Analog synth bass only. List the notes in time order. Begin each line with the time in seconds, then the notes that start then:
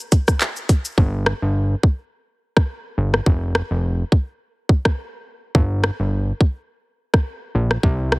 0.98 G1
1.42 G1
2.98 G1
3.26 F1
3.71 F1
5.55 G1
6.00 G1
7.55 A#1
7.83 C2